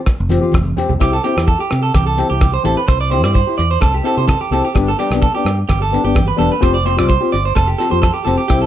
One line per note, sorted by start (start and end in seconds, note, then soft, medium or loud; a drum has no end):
0.05 kick medium
0.05 cross-stick medium
0.05 muted conga soft
0.05 maracas loud
0.20 0.38 F1 medium
0.29 0.41 C4 medium
0.29 0.41 F4 medium
0.29 0.40 G4 medium
0.29 closed hi-hat soft
0.29 muted conga soft
0.29 high conga medium
0.29 maracas medium
0.41 0.56 C4 soft
0.41 0.56 F4 medium
0.41 0.55 G4 medium
0.41 high conga medium
0.41 maracas soft
0.52 0.72 F1 loud
0.52 kick medium
0.52 cross-stick medium
0.52 high conga medium
0.52 maracas loud
0.64 high conga medium
0.64 maracas soft
0.77 0.92 F3 medium
0.77 0.92 C4 medium
0.77 0.92 G4 medium
0.77 muted steel-string acoustic guitar stroke medium
0.77 closed hi-hat soft
0.77 low conga medium
0.77 maracas medium
0.89 0.98 C2 medium
0.89 low conga medium
0.89 maracas soft
0.99 1.19 C2 medium
0.99 1.15 C4 medium
0.99 1.15 E4 medium
0.99 1.15 G4 medium
0.99 1.13 G4 medium
0.99 kick medium
0.99 cross-stick medium
0.99 maracas medium
1.13 1.24 A4 medium
1.24 1.36 C4 medium
1.24 1.36 E4 medium
1.24 1.46 G4 medium
1.24 1.34 G4 medium
1.24 closed hi-hat soft
1.24 muted conga soft
1.24 maracas medium
1.35 1.55 E2 medium
1.35 1.50 E4 soft
1.35 1.49 G4 medium
1.35 cross-stick medium
1.47 1.59 A4 medium
1.47 kick medium
1.47 maracas medium
1.59 1.73 G4 soft
1.59 1.82 G4 medium
1.71 1.90 C3 medium
1.71 cross-stick medium
1.71 closed hi-hat soft
1.71 maracas medium
1.83 1.93 A4 medium
1.94 2.22 C2 medium
1.94 2.06 G4 medium
1.94 kick medium
1.94 cross-stick medium
1.94 muted conga soft
1.94 high conga medium
1.94 maracas loud
2.07 2.29 A4 medium
2.17 2.30 C4 medium
2.17 2.30 E4 medium
2.17 2.29 G4 medium
2.17 closed hi-hat soft
2.17 maracas medium
2.30 2.57 C2 medium
2.30 2.44 E4 soft
2.30 2.52 G4 medium
2.30 2.43 G4 soft
2.41 kick medium
2.41 cross-stick medium
2.41 high conga medium
2.41 maracas medium
2.54 2.64 C5 medium
2.63 2.74 A1 medium
2.63 2.78 C4 medium
2.63 2.79 E4 medium
2.63 2.79 G4 medium
2.63 2.77 A4 medium
2.63 closed hi-hat soft
2.63 muted conga soft
2.63 high conga medium
2.63 maracas medium
2.77 2.87 B4 medium
2.88 3.24 C2 medium
2.88 3.00 C5 medium
2.88 kick medium
2.88 cross-stick medium
2.88 muted conga soft
2.88 maracas medium
3.01 3.11 D5 medium
3.11 3.23 C4 medium
3.11 3.24 E4 medium
3.11 3.22 G4 medium
3.11 3.23 C5 medium
3.11 closed hi-hat soft
3.11 muted conga soft
3.11 maracas medium
3.23 3.42 G2 medium
3.23 3.38 E4 soft
3.23 3.37 G4 medium
3.23 3.34 D5 medium
3.23 cross-stick medium
3.34 3.57 C5 medium
3.34 kick medium
3.34 maracas medium
3.47 3.61 E4 soft
3.47 3.60 G4 soft
3.58 3.76 E2 medium
3.58 3.70 D5 medium
3.58 closed hi-hat soft
3.58 maracas medium
3.71 3.81 C5 medium
3.81 4.00 C2 medium
3.81 3.93 A4 medium
3.81 kick medium
3.81 cross-stick medium
3.81 muted conga soft
3.81 low conga medium
3.81 maracas medium
3.94 4.04 G4 medium
4.03 4.16 C4 medium
4.03 4.17 E4 medium
4.03 4.17 G4 medium
4.03 4.17 A4 medium
4.03 closed hi-hat soft
4.03 maracas medium
4.17 4.35 C3 medium
4.17 4.32 E4 soft
4.17 4.31 G4 medium
4.17 4.27 C5 medium
4.28 4.40 A4 medium
4.28 kick medium
4.28 cross-stick medium
4.28 high conga medium
4.28 maracas medium
4.41 4.51 G4 medium
4.51 4.61 C2 medium
4.51 4.66 C4 medium
4.51 4.66 E4 medium
4.51 4.67 G4 medium
4.51 4.64 A4 medium
4.51 closed hi-hat soft
4.51 muted conga soft
4.51 maracas medium
4.65 4.74 G4 medium
4.75 4.93 G1 medium
4.75 4.89 G3 medium
4.75 4.90 B3 medium
4.75 4.90 D4 medium
4.75 4.90 G4 medium
4.75 muted clean electric guitar stroke medium
4.75 kick medium
4.75 cross-stick medium
4.75 maracas medium
4.88 4.98 A4 medium
4.98 5.11 G3 medium
4.98 5.11 B3 medium
4.98 5.11 D4 medium
4.98 5.21 G4 medium
4.98 5.11 G4 medium
4.98 closed hi-hat soft
4.98 muted conga soft
4.98 maracas medium
5.10 5.28 B1 medium
5.10 5.26 B3 soft
5.10 5.25 D4 soft
5.10 5.25 G4 medium
5.10 cross-stick medium
5.22 5.33 A4 medium
5.22 kick medium
5.22 maracas medium
5.35 5.49 B3 soft
5.35 5.48 D4 soft
5.35 5.56 G4 medium
5.35 5.48 G4 soft
5.45 5.63 G2 medium
5.45 cross-stick medium
5.45 closed hi-hat soft
5.45 maracas medium
5.69 5.97 G1 medium
5.69 5.80 G4 medium
5.69 kick medium
5.69 cross-stick medium
5.69 muted conga soft
5.69 high conga medium
5.69 maracas medium
5.82 6.04 A4 medium
5.92 6.05 G3 medium
5.92 6.04 B3 medium
5.92 6.03 D4 medium
5.92 6.02 G4 medium
5.92 closed hi-hat soft
5.92 maracas medium
6.03 6.31 G1 medium
6.03 6.18 B3 soft
6.03 6.17 D4 soft
6.03 6.17 G4 medium
6.03 6.27 G4 medium
6.15 kick medium
6.15 cross-stick medium
6.15 high conga medium
6.15 maracas medium
6.28 6.38 B4 medium
6.37 6.49 E1 medium
6.37 6.52 G3 medium
6.37 6.52 B3 medium
6.37 6.53 D4 medium
6.37 6.53 G4 medium
6.37 6.50 A4 medium
6.37 closed hi-hat soft
6.37 muted conga soft
6.37 high conga medium
6.52 6.62 B4 medium
6.60 7.00 F1 medium
6.60 6.76 F3 medium
6.60 6.76 C4 medium
6.60 6.76 F4 medium
6.60 6.76 G4 medium
6.60 6.74 C5 medium
6.60 kick medium
6.60 cross-stick medium
6.60 muted conga soft
6.60 maracas medium
6.74 6.85 D5 medium
6.84 6.97 F3 medium
6.84 6.96 C4 medium
6.84 6.96 F4 medium
6.84 6.97 C5 medium
6.84 muted steel-string acoustic guitar stroke medium
6.84 closed hi-hat soft
6.84 muted conga soft
6.84 maracas medium
6.97 7.16 C2 medium
6.97 7.11 C4 soft
6.97 7.11 F4 soft
6.97 7.11 G4 medium
6.97 7.08 D5 medium
6.97 cross-stick medium
7.09 7.31 C5 medium
7.09 kick medium
7.09 maracas medium
7.20 7.35 C4 soft
7.20 7.35 F4 soft
7.20 7.34 G4 medium
7.32 7.51 G1 medium
7.32 7.44 D5 medium
7.32 closed hi-hat soft
7.32 maracas medium
7.45 7.55 C5 medium
7.55 7.74 F1 medium
7.55 7.67 A4 medium
7.55 kick medium
7.55 cross-stick medium
7.55 muted conga soft
7.55 low conga medium
7.55 maracas medium
7.68 7.78 G4 medium
7.78 7.91 F3 medium
7.78 7.91 C4 medium
7.78 7.90 F4 medium
7.78 7.89 G4 medium
7.78 7.91 A4 medium
7.78 closed hi-hat soft
7.78 maracas medium
7.90 8.10 F2 medium
7.90 8.05 C4 soft
7.90 8.05 F4 soft
7.90 8.04 G4 medium
7.90 8.01 C5 medium
8.02 8.13 A4 medium
8.02 kick medium
8.02 cross-stick medium
8.02 high conga medium
8.02 maracas medium
8.14 8.24 G4 medium
8.25 8.36 F1 medium
8.25 8.40 F3 medium
8.25 8.41 C4 medium
8.25 8.41 F4 medium
8.25 8.41 G4 medium
8.25 8.37 A4 medium
8.25 closed hi-hat soft
8.25 muted conga soft
8.25 maracas medium
8.38 8.47 G4 medium
8.48 8.66 C2 medium
8.48 8.64 C4 medium
8.48 8.64 E4 medium
8.48 8.61 G4 medium
8.48 8.64 G4 medium
8.48 kick medium
8.48 cross-stick medium
8.48 muted conga soft
8.48 maracas medium
8.62 8.66 A4 medium